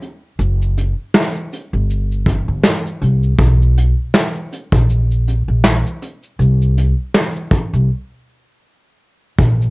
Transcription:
0.02 closed hi-hat soft
0.02 shaker soft
0.39 0.92 F#1 medium
0.39 shaker medium
0.62 shaker soft
0.78 closed hi-hat medium
0.78 shaker soft
1.14 snare loud
1.14 shaker medium
1.35 shaker soft
1.53 closed hi-hat medium
1.53 shaker soft
1.73 2.40 G1 medium
1.90 shaker medium
2.12 shaker soft
2.26 kick medium
2.26 closed hi-hat medium
2.26 shaker soft
2.48 2.62 G1 medium
2.63 snare loud
2.63 shaker medium
2.86 shaker medium
3.02 3.35 C2 medium
3.02 closed hi-hat soft
3.02 shaker soft
3.23 shaker soft
3.39 3.92 B1 loud
3.39 kick loud
3.39 shaker medium
3.62 shaker soft
3.78 closed hi-hat medium
3.78 shaker soft
4.14 snare loud
4.14 shaker medium
4.35 shaker soft
4.53 closed hi-hat medium
4.53 shaker soft
4.72 5.40 A#1 loud
4.72 kick loud
4.90 shaker medium
5.11 shaker soft
5.28 closed hi-hat medium
5.28 shaker soft
5.48 5.82 A#1 medium
5.64 snare loud
5.64 shaker medium
5.86 shaker medium
6.02 closed hi-hat medium
6.02 shaker soft
6.23 shaker soft
6.39 6.92 C2 loud
6.39 shaker medium
6.62 shaker soft
6.78 closed hi-hat medium
6.78 shaker soft
7.14 snare loud
7.14 shaker medium
7.36 shaker soft
7.51 kick medium
7.51 closed hi-hat medium
7.51 shaker soft
7.73 7.87 C2 medium
7.73 shaker soft
9.39 9.70 A#1 medium
9.39 kick loud
9.39 shaker medium
9.62 shaker soft

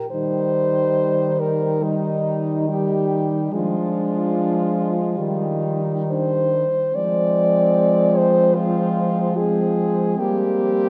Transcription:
0.11 3.49 D#3 soft
0.11 1.79 G3 soft
0.11 1.79 D#4 soft
0.11 1.41 C5 medium
1.40 1.85 A#4 medium
1.81 2.67 G3 soft
1.81 2.67 D#4 soft
1.81 2.71 D#4 medium
2.69 3.54 G3 soft
2.69 3.54 D#4 soft
2.69 3.53 G4 medium
3.52 5.15 F3 medium
3.52 5.20 G#3 medium
3.52 5.00 D4 medium
3.52 5.78 F4 medium
5.17 6.65 D#3 soft
5.17 6.68 G3 soft
5.17 6.12 D#4 soft
6.11 6.68 D4 soft
6.11 6.97 C5 medium
6.94 10.14 F3 medium
6.94 8.52 G#3 medium
6.94 8.52 C4 medium
6.94 8.19 D5 medium
8.17 8.57 C5 medium
8.55 9.35 G#3 soft
8.55 9.34 C4 medium
8.55 9.39 F4 medium
9.35 10.21 G#3 soft
9.35 10.16 C4 soft
9.35 10.21 G#4 medium
10.16 10.89 G3 medium
10.16 10.89 A#3 medium
10.16 10.89 C4 medium
10.16 10.89 G4 medium

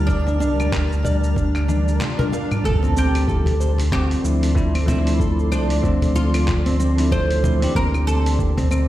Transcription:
0.00 0.42 D2 medium
0.00 2.60 G3 medium
0.00 2.61 D4 medium
0.00 2.60 A#4 medium
0.00 2.60 A5 medium
0.00 2.66 F6 medium
0.07 1.95 D4 medium
0.07 kick medium
0.07 shaker soft
0.27 0.39 D4 medium
0.27 cajon slap medium
0.27 shaker soft
0.40 0.60 C2 medium
0.40 0.71 D4 loud
0.40 shaker medium
0.59 2.00 D2 loud
0.59 cajon slap medium
0.59 claves medium
0.59 shaker soft
0.72 0.90 A#4 medium
0.72 kick loud
0.72 clap medium
0.72 shaker soft
0.92 shaker soft
1.04 1.15 D5 medium
1.04 cajon bass medium
1.04 shaker medium
1.24 shaker soft
1.36 1.53 D4 medium
1.36 kick medium
1.36 swell medium
1.36 shaker soft
1.55 clap soft
1.55 claves medium
1.55 shaker soft
1.68 1.86 D4 medium
1.68 high tom medium
1.68 shaker medium
1.88 shaker soft
2.01 2.65 F4 medium
2.01 clap loud
2.01 mid tom medium
2.01 shaker soft
2.19 2.32 A#4 loud
2.19 cajon bass medium
2.19 mid tom medium
2.19 shaker soft
2.32 2.49 F5 loud
2.32 cajon slap medium
2.32 shaker medium
2.51 cajon slap medium
2.51 mid tom medium
2.51 claves medium
2.51 shaker soft
2.64 4.16 D2 loud
2.64 7.71 A4 medium
2.64 2.95 A4 loud
2.64 7.71 D5 medium
2.64 7.71 C6 medium
2.64 kick loud
2.64 impact medium
2.64 shaker soft
2.83 2.95 C4 medium
2.83 cajon slap medium
2.83 shaker soft
2.97 3.27 C4 loud
2.97 3.89 G4 loud
2.97 shaker medium
3.15 open hi-hat medium
3.15 claves medium
3.15 shaker soft
3.27 3.45 F3 medium
3.27 3.45 A3 medium
3.27 3.46 C4 medium
3.27 3.46 D4 medium
3.27 3.46 E4 medium
3.27 3.46 A4 medium
3.27 kick loud
3.27 shaker soft
3.46 cajon bass medium
3.46 cajon slap medium
3.46 open hi-hat soft
3.46 shaker soft
3.60 3.71 C5 medium
3.60 shaker medium
3.78 cajon slap medium
3.78 open hi-hat medium
3.78 shaker soft
3.92 4.54 C4 medium
3.92 4.84 F4 loud
3.92 kick loud
3.92 clap medium
3.92 claves medium
3.92 shaker soft
4.11 open hi-hat soft
4.11 shaker soft
4.23 5.54 D2 medium
4.23 4.49 F3 medium
4.23 4.49 A3 medium
4.23 4.49 C4 medium
4.23 4.49 D4 medium
4.23 4.50 E4 medium
4.23 shaker medium
4.43 cajon slap soft
4.43 open hi-hat medium
4.43 shaker soft
4.55 4.73 F3 medium
4.55 4.73 A3 medium
4.55 4.73 C4 medium
4.55 4.73 D4 medium
4.55 4.73 E4 loud
4.55 kick loud
4.55 shaker soft
4.75 4.87 C4 medium
4.75 open hi-hat soft
4.75 claves medium
4.75 shaker soft
4.86 5.79 F3 loud
4.86 5.80 A3 medium
4.86 5.80 C4 medium
4.86 5.18 C4 loud
4.86 5.81 D4 medium
4.86 5.48 E4 loud
4.86 5.81 E4 loud
4.86 cajon bass medium
4.86 cajon slap medium
4.86 shaker medium
5.07 open hi-hat medium
5.07 shaker soft
5.20 5.37 A4 medium
5.20 kick loud
5.20 shaker soft
5.39 shaker soft
5.52 5.71 C2 medium
5.52 6.12 D4 loud
5.52 5.62 C5 medium
5.52 claves medium
5.52 shaker medium
5.70 7.67 D2 medium
5.70 open hi-hat medium
5.70 shaker soft
5.83 6.93 F3 medium
5.83 6.93 A3 medium
5.83 6.46 C4 medium
5.83 6.94 C4 medium
5.83 6.94 D4 medium
5.83 6.95 F4 loud
5.83 kick loud
5.83 shaker soft
6.02 cajon bass medium
6.02 cajon slap medium
6.02 open hi-hat soft
6.02 shaker soft
6.16 7.12 F4 loud
6.16 shaker medium
6.34 cajon slap medium
6.34 open hi-hat medium
6.34 claves medium
6.34 shaker soft
6.48 kick loud
6.48 cajon bass medium
6.48 clap medium
6.48 shaker soft
6.66 6.78 C4 medium
6.66 open hi-hat soft
6.66 shaker soft
6.79 7.10 C4 loud
6.79 shaker medium
6.97 7.40 F3 medium
6.97 7.40 A3 medium
6.97 7.40 C4 medium
6.97 7.40 D4 medium
6.97 7.41 E4 medium
6.97 open hi-hat medium
6.97 shaker soft
7.11 7.29 A4 medium
7.11 7.72 C5 loud
7.11 kick loud
7.11 claves medium
7.11 shaker soft
7.31 open hi-hat soft
7.31 shaker soft
7.43 7.57 F3 medium
7.43 7.57 A3 medium
7.43 7.58 C4 medium
7.43 7.58 D4 medium
7.43 7.58 E4 medium
7.43 7.54 C5 medium
7.43 cajon bass loud
7.43 shaker medium
7.60 8.35 E3 medium
7.60 8.35 A#3 medium
7.60 8.36 C4 medium
7.60 8.36 D4 medium
7.60 8.37 G4 loud
7.60 cajon slap medium
7.60 open hi-hat medium
7.60 shaker soft
7.74 8.88 D2 loud
7.74 8.38 C4 medium
7.74 8.88 G4 medium
7.74 8.07 A#4 loud
7.74 8.88 C5 medium
7.74 8.88 E5 medium
7.74 kick loud
7.74 shaker soft
7.94 cajon slap medium
7.94 claves medium
7.94 shaker soft
8.07 8.88 A4 loud
8.07 shaker medium
8.26 open hi-hat medium
8.26 shaker soft
8.38 8.56 E3 medium
8.38 8.56 A#3 medium
8.38 8.56 C4 medium
8.38 8.57 D4 medium
8.38 8.57 G4 medium
8.38 kick loud
8.38 shaker soft
8.57 8.70 C4 medium
8.57 cajon bass medium
8.57 cajon slap medium
8.57 open hi-hat soft
8.57 shaker soft
8.71 8.88 C4 loud
8.71 claves medium
8.71 shaker medium

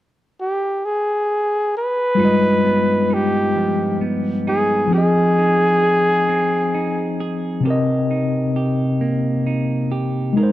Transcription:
0.40 0.87 G4 medium
0.85 1.75 G#4 medium
1.77 3.15 B4 loud
2.15 4.91 G2 medium
2.15 4.86 G3 medium
2.15 4.87 F4 medium
2.20 4.88 G#3 medium
2.20 3.10 D#4 medium
2.20 4.89 B4 medium
2.25 4.90 D#5 medium
2.64 4.00 B3 soft
3.10 4.47 D#4 medium
3.10 4.03 G4 medium
3.56 4.92 F3 medium
4.01 5.01 B3 medium
4.47 5.38 D#4 medium
4.47 4.90 G#4 medium
4.88 7.58 F3 medium
4.88 7.60 C4 medium
4.92 7.65 F3 medium
4.92 5.82 G#4 medium
4.92 7.62 G#4 medium
4.92 7.16 G#4 loud
4.98 7.63 D#5 medium
5.38 6.74 D#4 medium
5.84 7.19 G#4 medium
6.29 9.01 C4 medium
6.74 8.10 D#4 medium
7.20 7.65 G#4 medium
7.60 10.31 C3 medium
7.60 10.33 C4 medium
7.65 10.37 C3 medium
7.65 8.56 G4 medium
7.65 10.34 A#4 medium
7.70 10.36 D#5 medium
8.11 9.46 D#4 soft
8.56 9.91 G4 medium
9.01 10.52 A#3 medium
9.47 10.52 D#4 soft
9.92 10.37 G4 medium
10.33 10.52 G#3 medium
10.33 10.52 D#4 medium
10.37 10.52 A#4 medium
10.43 10.52 C5 medium

